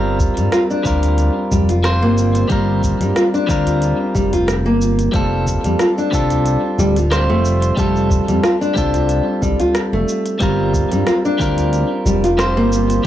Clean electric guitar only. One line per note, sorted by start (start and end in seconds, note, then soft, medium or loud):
0.00 0.81 G3 medium
0.00 0.81 C4 medium
0.00 0.82 F4 medium
0.00 0.83 A#4 loud
0.83 1.79 G3 medium
0.83 1.80 C4 medium
0.83 1.81 F4 medium
0.83 1.81 A#4 medium
1.83 2.46 G3 medium
1.83 2.46 C4 medium
1.83 2.47 F4 medium
1.83 2.47 C5 loud
2.48 3.44 G3 medium
2.48 3.45 C4 medium
2.48 3.46 F4 medium
2.52 3.46 A#4 loud
3.47 5.09 G3 medium
3.47 5.10 C4 medium
3.47 5.11 F4 medium
3.47 5.11 A#4 loud
5.12 6.08 G3 medium
5.12 6.09 C4 medium
5.12 6.09 F4 medium
5.16 6.10 A4 loud
6.11 7.07 G3 medium
6.11 7.08 C4 medium
6.11 7.08 F4 medium
6.11 7.09 A4 medium
7.11 7.73 G3 medium
7.11 7.74 C4 medium
7.11 7.74 F4 medium
7.11 7.74 C5 loud
7.75 8.72 G3 medium
7.75 8.72 C4 medium
7.75 8.73 F4 medium
7.79 8.74 A4 loud
8.74 10.36 G3 medium
8.74 10.37 C4 medium
8.74 10.38 F4 medium
8.78 10.38 A4 loud
10.39 11.36 G3 medium
10.39 11.36 C4 medium
10.39 11.37 F4 medium
10.39 11.37 A#4 loud
11.38 12.34 G3 medium
11.38 12.35 C4 medium
11.38 12.36 F4 medium
11.38 12.36 A#4 medium
12.38 13.01 G3 medium
12.38 13.01 C4 medium
12.38 13.01 F4 medium
12.38 13.02 C5 loud
13.03 13.07 G3 medium